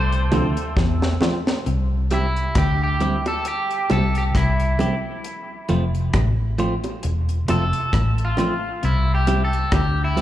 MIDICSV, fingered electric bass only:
0, 0, Header, 1, 2, 480
1, 0, Start_track
1, 0, Key_signature, 0, "major"
1, 0, Tempo, 895522
1, 891, Time_signature, 4, 2, 24, 8
1, 5475, End_track
2, 0, Start_track
2, 0, Title_t, "Fingered electric bass"
2, 0, Program_c, 0, 33
2, 0, Note_on_c, 0, 36, 97
2, 145, Note_off_c, 0, 36, 0
2, 175, Note_on_c, 0, 38, 84
2, 293, Note_off_c, 0, 38, 0
2, 413, Note_on_c, 0, 40, 90
2, 624, Note_off_c, 0, 40, 0
2, 894, Note_on_c, 0, 36, 97
2, 1316, Note_off_c, 0, 36, 0
2, 1372, Note_on_c, 0, 38, 83
2, 1703, Note_off_c, 0, 38, 0
2, 2094, Note_on_c, 0, 36, 83
2, 2305, Note_off_c, 0, 36, 0
2, 2333, Note_on_c, 0, 36, 91
2, 2544, Note_off_c, 0, 36, 0
2, 3056, Note_on_c, 0, 29, 97
2, 3266, Note_off_c, 0, 29, 0
2, 3292, Note_on_c, 0, 33, 83
2, 3624, Note_off_c, 0, 33, 0
2, 3776, Note_on_c, 0, 28, 89
2, 3986, Note_off_c, 0, 28, 0
2, 4016, Note_on_c, 0, 29, 99
2, 4134, Note_off_c, 0, 29, 0
2, 4252, Note_on_c, 0, 33, 97
2, 4464, Note_off_c, 0, 33, 0
2, 4736, Note_on_c, 0, 36, 103
2, 5158, Note_off_c, 0, 36, 0
2, 5213, Note_on_c, 0, 38, 87
2, 5475, Note_off_c, 0, 38, 0
2, 5475, End_track
0, 0, End_of_file